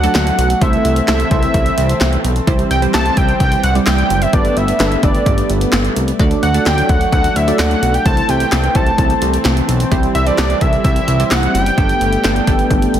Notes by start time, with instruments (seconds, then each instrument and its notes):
Already playing: analog synth pad F#3 A3 D4, analog synth lead F#5
0.04 analog polysynth F#3 A3 D4 F#4 A4, closed hi-hat
0.15 analog synth bass D2, snare, clap, closed hi-hat
0.27 closed hi-hat
0.38 analog synth bass B1, closed hi-hat
0.50 closed hi-hat
0.61 analog synth bass C2, analog synth pad E3 C4, analog polysynth A3 C4 E4 A4 C5, analog synth lead E5, kick, closed hi-hat
0.73 closed hi-hat
0.85 analog synth bass C2, closed hi-hat
0.96 closed hi-hat
1.08 analog synth bass C2, analog polysynth A3 C4 E4 A4 C5, analog synth lead E5, snare, clap, closed hi-hat
1.20 closed hi-hat
1.31 analog synth bass C2, analog polysynth A3 C4 E4 A4 C5, analog synth lead E5, kick, closed hi-hat
1.43 closed hi-hat
1.54 analog synth bass C2, kick, closed hi-hat
1.66 closed hi-hat
1.78 analog synth bass C2, closed hi-hat
1.89 closed hi-hat
2.01 analog synth bass C2, snare, clap, closed hi-hat
2.13 closed hi-hat
2.24 analog synth bass B1, closed hi-hat
2.36 closed hi-hat
2.47 analog synth bass C2, analog synth pad E3 G3 C4, analog polysynth G3 C4 E4 G4 C5, kick, closed hi-hat
2.59 closed hi-hat
2.71 analog synth bass C2, analog synth lead G5, closed hi-hat
2.82 analog polysynth G3 C4 E4 G4 C5, closed hi-hat
2.94 analog synth bass C2, analog synth lead A5, snare, clap, closed hi-hat
3.06 closed hi-hat
3.17 analog synth bass C2, analog synth lead G5, kick, closed hi-hat
3.29 closed hi-hat
3.40 analog synth bass C2, analog synth lead G5, kick, closed hi-hat
3.52 closed hi-hat
3.64 analog synth bass C2, analog synth lead F#5, closed hi-hat
3.75 analog polysynth G3 C4 E4 G4 D5, closed hi-hat
3.87 analog synth bass C2, analog synth lead G5, snare, clap, closed hi-hat
3.98 closed hi-hat
4.10 analog synth bass F#1, closed hi-hat
4.22 analog synth lead E5, closed hi-hat
4.33 analog synth bass G1, analog synth pad A3 B3, analog polysynth B3 D4 G4 A4 B4, analog synth lead D5, kick, closed hi-hat
4.45 closed hi-hat
4.57 analog synth bass G1, analog synth lead E5, closed hi-hat
4.68 closed hi-hat
4.80 analog synth bass G1, analog polysynth B3 D4 G4 A4 B4, snare, clap, closed hi-hat
4.92 closed hi-hat
5.03 analog synth bass G1, analog polysynth B3 D4 G4 A4 B4, analog synth lead D5, kick, closed hi-hat
5.15 closed hi-hat
5.26 analog synth bass G1, kick, closed hi-hat
5.38 closed hi-hat
5.50 analog synth bass G1, closed hi-hat
5.61 closed hi-hat
5.73 analog synth bass G1, snare, clap, closed hi-hat
5.85 closed hi-hat
5.96 analog synth bass C2, closed hi-hat
6.08 closed hi-hat
6.19 analog synth bass D2, analog synth pad F#3 D4, analog polysynth A3 D4 F#4 A4 D5, kick, closed hi-hat
6.31 closed hi-hat
6.43 analog synth bass D2, analog synth lead F#5, closed hi-hat
6.54 analog polysynth A3 D4 F#4 A4 D5, closed hi-hat
6.66 analog synth bass D2, analog synth lead G5, snare, clap, closed hi-hat
6.78 closed hi-hat
6.89 analog synth bass D2, analog synth lead F#5, kick, closed hi-hat
7.01 closed hi-hat
7.12 analog synth bass D2, analog synth lead F#5, kick, closed hi-hat
7.24 closed hi-hat
7.36 analog synth bass D2, analog synth lead E5, closed hi-hat
7.48 analog polysynth A3 D4 F#4 A4 D5, closed hi-hat
7.59 analog synth bass D2, analog synth lead F#5, snare, clap, closed hi-hat
7.71 closed hi-hat
7.82 analog synth bass B1, closed hi-hat
7.94 analog synth lead G5, closed hi-hat
8.05 analog synth bass C2, analog synth pad E3 C4, analog polysynth A3 C4 E4 A4 C5, analog synth lead A5, kick, closed hi-hat
8.17 closed hi-hat
8.29 analog synth bass C2, analog synth lead G5, closed hi-hat
8.40 closed hi-hat
8.52 analog synth bass C2, analog polysynth A3 C4 E4 A4 B4, snare, clap, closed hi-hat
8.64 closed hi-hat
8.75 analog synth bass C2, analog polysynth A3 C4 E4 A4 C5, analog synth lead A5, kick, closed hi-hat
8.87 closed hi-hat
8.98 analog synth bass C2, kick, closed hi-hat
9.10 closed hi-hat
9.22 analog synth bass C2, closed hi-hat
9.34 closed hi-hat
9.45 analog synth bass C2, snare, clap, closed hi-hat
9.57 closed hi-hat
9.68 analog synth bass B1, closed hi-hat
9.80 closed hi-hat
9.91 analog synth bass C2, analog polysynth G3 C4 E4 G4 C5, analog synth pad G3, kick, closed hi-hat
10.03 closed hi-hat
10.15 analog synth bass C2, analog synth lead E5, closed hi-hat
10.26 analog polysynth G3 C4 E4 G4 A4, analog synth lead D5, closed hi-hat
10.38 analog synth bass C2, analog synth lead D5, snare, clap, closed hi-hat
10.50 closed hi-hat
10.61 analog synth bass C2, analog synth lead E5, kick, closed hi-hat
10.73 closed hi-hat
10.84 analog synth bass C2, analog synth lead E5, kick, closed hi-hat
10.96 closed hi-hat
11.08 analog synth bass C2, closed hi-hat
11.20 analog polysynth G3 C4 E4 G4 C5, closed hi-hat
11.31 analog synth bass C2, analog synth lead F#5, snare, clap, closed hi-hat
11.43 closed hi-hat
11.54 analog synth bass F#1, analog synth lead G5, closed hi-hat
11.66 closed hi-hat
11.77 analog synth bass G1, analog synth pad A3 B3, analog polysynth A3 B3 D4 G4 A4, kick, closed hi-hat
11.89 closed hi-hat
12.01 analog synth bass G1, closed hi-hat
12.13 closed hi-hat
12.24 analog synth bass G1, analog polysynth A3 B3 D4 G4 A4, snare, clap, closed hi-hat
12.36 closed hi-hat
12.47 analog synth bass G1, analog polysynth A3 B3 D4 G4 A4, kick, closed hi-hat
12.59 closed hi-hat
12.71 analog synth bass G1, kick, closed hi-hat
12.82 closed hi-hat
12.94 analog synth bass G1, closed hi-hat